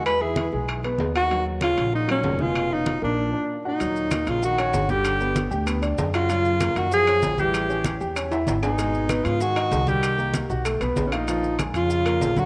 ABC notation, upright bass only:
X:1
M:4/4
L:1/8
Q:1/4=193
K:Ebm
V:1 name="Upright bass" clef=bass
=E,,3 =B,,,3 _E,,2- | E,,3 B,,,3 F,,,2- | F,,,3 B,,,2 z3 | E,,3 B,,,3 =G,,,2- |
=G,,,3 =D,,3 _G,,2- | G,,3 G,,3 =A,,,2- | =A,,,3 =E,,3 _A,,,2- | A,,,3 A,,3 =C,,2- |
=C,,3 _C,,2 =B,,, ^A,,,2- | ^A,,,3 F,,3 B,,,2 |]